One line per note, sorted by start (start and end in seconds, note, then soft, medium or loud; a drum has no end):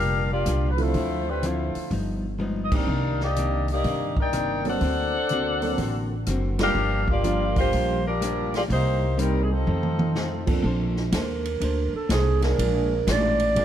0.00 0.43 F1 medium
0.00 0.31 A#2 medium
0.00 0.31 G3 medium
0.00 0.28 D4 medium
0.00 0.32 D4 medium
0.00 0.33 F4 medium
0.00 0.28 G4 medium
0.00 0.28 A#4 medium
0.00 0.29 F5 loud
0.33 0.68 A#3 medium
0.33 0.68 F4 medium
0.33 0.68 G4 medium
0.33 0.68 D5 medium
0.46 0.91 C2 medium
0.46 0.80 A#2 medium
0.46 0.80 G3 medium
0.46 0.81 D4 medium
0.46 0.81 F4 medium
0.46 cross-stick medium
0.46 closed hi-hat medium
0.72 0.80 B4 medium
0.76 0.92 D3 medium
0.76 0.93 F3 medium
0.76 0.93 A3 medium
0.76 0.93 C4 medium
0.76 0.93 E4 medium
0.76 open hi-hat soft
0.82 1.28 A3 medium
0.82 1.28 E4 medium
0.82 1.29 F4 medium
0.82 1.29 C5 medium
0.94 1.71 D2 medium
0.94 1.28 D3 medium
0.94 1.29 F3 soft
0.94 1.30 C4 medium
0.94 1.30 E4 medium
0.94 kick soft
0.94 open hi-hat soft
1.29 1.45 G3 medium
1.29 1.44 C4 medium
1.29 1.44 E4 medium
1.29 1.44 B4 medium
1.43 1.76 D3 medium
1.43 1.77 F3 medium
1.43 1.93 A3 medium
1.43 1.77 C4 medium
1.43 1.78 E4 medium
1.43 1.93 E4 medium
1.43 1.93 F4 medium
1.43 1.93 C5 medium
1.43 closed hi-hat medium
1.75 muted upright bass stroke soft
1.75 open hi-hat soft
1.91 2.84 G1 medium
1.91 2.25 G2 soft
1.91 2.25 F3 soft
1.91 2.26 B3 soft
1.91 2.26 D#4 medium
1.91 kick soft
1.91 open hi-hat soft
2.39 2.73 G2 medium
2.39 2.73 F3 medium
2.39 2.74 B3 medium
2.39 2.74 D#4 medium
2.39 high tom soft
2.65 2.73 D#5 medium
2.72 2.86 D#3 medium
2.72 2.86 A#3 medium
2.72 2.87 C4 medium
2.72 2.87 D4 medium
2.72 2.87 G4 medium
2.72 kick medium
2.72 crash medium
2.76 3.23 D#4 medium
2.76 3.22 A#4 medium
2.76 3.22 D5 medium
2.76 3.22 F5 medium
2.87 3.80 C2 medium
2.87 3.21 C3 medium
2.87 3.22 D#3 medium
2.87 3.23 A#3 medium
2.87 3.23 D4 medium
3.20 3.67 A#3 medium
3.20 3.67 G4 medium
3.20 3.67 D5 medium
3.20 3.67 D#5 medium
3.20 snare soft
3.36 3.70 C3 medium
3.36 3.71 D#3 medium
3.36 3.71 A#3 medium
3.36 3.72 D4 medium
3.36 closed hi-hat medium
3.68 open hi-hat soft
3.72 4.16 A#3 medium
3.72 4.16 D#4 medium
3.72 4.16 G4 medium
3.72 4.16 D5 medium
3.84 4.77 G1 medium
3.84 4.18 C3 soft
3.84 4.19 D#3 medium
3.84 4.20 A#3 medium
3.84 kick soft
3.84 open hi-hat soft
3.88 4.20 D4 soft
4.17 4.67 D#4 medium
4.17 4.67 A#4 medium
4.17 kick medium
4.21 4.67 D5 medium
4.21 4.67 G5 loud
4.33 4.67 C3 medium
4.33 4.67 D#3 medium
4.33 4.67 A#3 medium
4.33 4.68 D4 medium
4.33 cross-stick medium
4.33 closed hi-hat medium
4.64 4.80 F#3 medium
4.64 4.80 A#3 medium
4.64 4.80 C4 medium
4.64 4.81 D4 medium
4.64 4.81 A4 medium
4.64 open hi-hat soft
4.69 6.09 D4 medium
4.69 6.09 A4 medium
4.69 6.09 C5 medium
4.69 6.08 F#5 medium
4.81 5.74 D2 medium
4.81 5.16 D3 soft
4.81 5.16 A#3 soft
4.81 5.17 C4 medium
4.81 kick soft
4.81 open hi-hat soft
4.85 5.17 F#4 medium
5.29 5.64 D3 medium
5.29 5.65 A#3 medium
5.29 5.65 C4 medium
5.29 closed hi-hat soft
5.33 5.65 F#4 medium
5.61 5.76 F#3 medium
5.61 5.77 A#3 medium
5.61 5.77 C4 medium
5.61 5.77 D4 medium
5.61 5.77 A4 medium
5.61 open hi-hat soft
5.78 6.23 A1 medium
5.78 6.12 D3 medium
5.78 6.13 A#3 medium
5.78 6.14 C4 medium
5.78 kick soft
5.78 open hi-hat soft
5.82 6.14 F#4 medium
6.26 6.72 F#1 medium
6.26 6.61 D3 medium
6.26 6.62 A#3 medium
6.26 6.62 C4 medium
6.26 6.62 F#4 medium
6.26 cross-stick medium
6.26 closed hi-hat medium
6.58 6.74 G3 medium
6.58 6.74 A#3 medium
6.58 6.74 D4 medium
6.58 6.74 F4 medium
6.58 6.74 A#4 medium
6.58 snare medium
6.58 ride medium
6.63 7.06 D4 medium
6.63 7.06 G4 medium
6.63 7.06 A#4 medium
6.63 7.06 F5 loud
6.75 7.68 G1 medium
6.75 7.10 G2 medium
6.75 7.10 F3 medium
6.75 7.10 A#3 medium
6.75 7.11 D4 medium
7.08 7.58 A#3 medium
7.08 7.57 F4 medium
7.08 7.58 G4 medium
7.08 7.58 D5 loud
7.08 kick medium
7.23 7.58 G2 medium
7.23 7.58 F3 medium
7.23 7.98 G3 soft
7.23 7.98 A#3 soft
7.23 7.58 A#3 medium
7.23 7.98 D4 soft
7.23 7.59 D4 medium
7.23 7.98 F4 soft
7.23 7.99 A#4 medium
7.23 closed hi-hat medium
7.56 8.03 A#3 medium
7.56 8.03 F4 medium
7.56 8.03 G4 medium
7.56 8.03 C5 medium
7.56 kick medium
7.56 open hi-hat soft
7.72 8.66 A#1 medium
7.72 8.06 G2 soft
7.72 8.07 F3 soft
7.72 8.07 A#3 soft
7.72 8.08 D4 medium
7.72 kick soft
7.72 open hi-hat soft
8.08 8.55 G3 medium
8.08 8.55 D4 medium
8.08 8.55 F4 medium
8.08 8.55 A#4 medium
8.21 8.55 G2 medium
8.21 8.55 F3 medium
8.21 8.56 A#3 medium
8.21 8.56 D4 medium
8.21 cross-stick medium
8.21 closed hi-hat medium
8.54 8.63 A#3 medium
8.54 8.63 F4 medium
8.54 8.63 G4 medium
8.54 8.63 D5 loud
8.54 snare soft
8.54 open hi-hat soft
8.68 9.63 C2 medium
8.68 9.03 C3 soft
8.68 9.04 G3 soft
8.68 9.04 A#3 medium
8.68 9.05 D#4 soft
8.68 9.16 G4 medium
8.68 kick soft
8.68 open hi-hat soft
8.72 9.17 A#3 medium
8.72 9.17 D#4 medium
8.72 9.16 C5 medium
9.18 9.52 C3 medium
9.18 9.47 G3 medium
9.18 9.52 G3 medium
9.18 9.43 G3 medium
9.18 9.47 A#3 medium
9.18 9.53 A#3 medium
9.18 9.47 C4 soft
9.18 9.42 C4 medium
9.18 9.48 D#4 soft
9.18 9.53 D#4 medium
9.18 9.43 D#4 medium
9.18 9.48 A#4 medium
9.18 9.43 A#4 medium
9.18 closed hi-hat medium
9.43 9.51 G#4 soft
9.52 10.49 F3 medium
9.52 10.49 C4 medium
9.52 10.49 D#4 medium
9.52 10.49 A4 medium
9.67 10.01 F2 soft
9.67 10.60 F2 medium
9.67 10.02 D#3 soft
9.67 10.02 A3 soft
9.67 10.02 C4 soft
9.67 mid tom soft
9.83 mid tom medium
9.99 mid tom medium
10.15 10.50 F2 medium
10.15 10.50 D#3 medium
10.15 10.50 A3 medium
10.15 10.50 C4 medium
10.15 snare medium
10.47 10.62 F3 medium
10.47 10.63 A#3 medium
10.47 10.63 C4 medium
10.47 10.63 D4 medium
10.47 10.63 A4 medium
10.47 kick medium
10.47 crash medium
10.63 11.11 A#1 medium
10.63 10.97 A#3 medium
10.63 10.98 D4 medium
10.63 10.99 A4 medium
10.63 10.99 C5 medium
10.63 kick soft
10.96 snare soft
11.12 11.60 D#2 medium
11.12 11.47 A#3 medium
11.12 11.47 D4 medium
11.12 11.47 A4 medium
11.12 11.48 C5 medium
11.12 kick soft
11.12 snare medium
11.12 hi-hat pedal medium
11.12 ride medium
11.17 11.92 A#4 medium
11.45 ride soft
11.60 11.91 D2 medium
11.60 11.95 A#3 soft
11.60 11.96 D4 medium
11.60 11.96 A4 medium
11.60 11.97 C5 medium
11.60 kick soft
11.60 ride medium
11.93 12.14 A4 medium
11.93 muted upright bass stroke soft
12.09 12.57 C2 medium
12.09 12.44 A#3 medium
12.09 12.44 D4 medium
12.09 12.44 G#4 medium
12.09 12.45 A4 medium
12.09 12.45 C5 medium
12.09 kick soft
12.09 snare medium
12.09 hi-hat pedal medium
12.09 ride medium
12.42 13.04 F3 medium
12.42 13.04 A#3 medium
12.42 13.04 D4 medium
12.42 13.04 G#4 loud
12.42 13.13 A#4 medium
12.42 snare soft
12.42 ride soft
12.58 13.06 A#1 medium
12.58 12.92 A#2 medium
12.58 12.93 G#3 medium
12.58 12.93 D4 medium
12.58 12.94 F4 medium
12.58 kick soft
12.58 ride medium
13.07 13.55 A1 medium
13.07 13.41 A#2 medium
13.07 13.41 G#3 medium
13.07 13.42 D4 medium
13.07 13.43 F4 medium
13.07 kick soft
13.07 snare medium
13.07 hi-hat pedal medium
13.07 ride medium
13.11 13.65 D5 loud
13.40 ride medium
13.56 13.65 G#1 medium
13.56 13.65 A#2 soft
13.56 13.65 F3 medium
13.56 13.65 G#3 medium
13.56 13.65 A#3 medium
13.56 13.65 D4 medium
13.56 13.65 F4 medium
13.56 13.65 G#4 medium
13.56 kick soft
13.56 ride medium